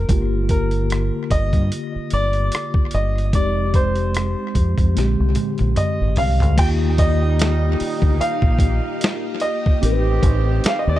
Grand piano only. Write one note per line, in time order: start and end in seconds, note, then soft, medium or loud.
0.00 0.49 A#4 medium
0.50 1.33 A#4 medium
1.31 2.14 D#5 loud
2.14 2.96 D5 loud
2.94 3.31 D#5 medium
3.35 3.76 D5 medium
3.75 6.14 C5 medium
5.77 6.19 D#5 medium
6.18 6.55 F5 medium
6.59 6.68 G5 loud
6.99 8.24 D#5 loud
8.21 9.45 F5 loud
9.41 10.64 D#5 medium
10.68 10.78 F5 medium
10.79 10.88 D#5 medium
10.89 10.96 D5 medium